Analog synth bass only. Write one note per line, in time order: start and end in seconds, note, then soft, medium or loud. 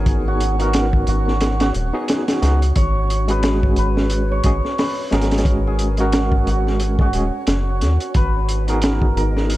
0.00 1.04 G#1 medium
1.07 1.72 G#1 medium
1.75 1.92 D#1 loud
2.42 2.72 C#2 medium
2.76 3.74 G#1 medium
3.77 4.41 G#1 medium
4.44 4.61 G#1 medium
5.12 6.44 G#1 medium
6.47 7.11 G#1 medium
7.13 7.31 D#1 loud
7.47 7.83 F#1 loud
7.81 7.98 D#2 medium
8.15 9.13 G#1 medium
9.16 9.57 G#1 medium